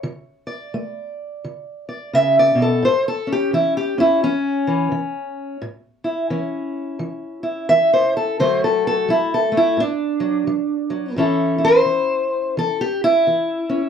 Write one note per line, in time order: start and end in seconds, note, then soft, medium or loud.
0.03 0.68 D3 medium
0.47 1.86 D5 soft
0.74 1.38 A3 medium
1.44 2.08 D3 medium
1.89 2.14 D5 soft
2.13 2.55 C#3 medium
2.13 2.37 E5 loud
2.39 2.61 D5 medium
2.55 2.83 B2 medium
2.62 2.84 A4 medium
2.83 3.47 A2 medium
2.83 3.07 C5 loud
3.08 3.30 A4 medium
3.27 3.98 C#4 soft
3.32 3.54 G4 medium
3.53 4.17 E3 medium
3.53 3.77 E4 medium
3.77 4.00 G4 medium
3.98 4.22 C#4 soft
3.98 4.23 E4 medium
4.23 4.66 E3 medium
4.23 5.62 C#4 loud
4.67 4.91 E3 medium
4.92 5.56 E3 medium
5.62 6.26 A2 medium
6.04 7.42 E4 soft
6.30 6.95 E3 medium
6.30 8.36 C#4 soft
6.99 7.64 E3 medium
7.43 8.37 E4 medium
7.69 8.34 E3 medium
7.69 7.93 E5 loud
7.93 8.16 C5 medium
8.17 8.40 A4 medium
8.40 9.04 D3 medium
8.40 9.07 F#3 medium
8.40 9.51 A3 medium
8.40 9.10 F#4 medium
8.40 8.63 C5 loud
8.64 8.86 A4 medium
8.87 9.10 A4 medium
9.08 9.73 F#3 medium
9.08 9.33 E4 medium
9.34 9.57 A4 medium
9.52 9.80 A3 medium
9.57 9.80 E4 medium
9.77 10.42 A2 medium
9.77 11.18 D4 medium
10.20 10.46 F#3 medium
10.47 10.89 F#3 medium
10.90 11.14 F#3 medium
11.16 11.81 A2 medium
11.16 11.85 E3 medium
11.16 13.69 C#4 medium
11.16 11.58 E4 medium
11.16 11.64 A4 medium
11.58 12.81 E4 soft
11.65 12.57 C5 loud
11.85 12.51 E3 medium
12.57 13.21 E3 medium
12.57 12.81 A4 loud
12.81 13.04 G4 medium
13.04 13.89 E4 loud
13.27 13.89 E3 medium
13.69 13.89 C#4 medium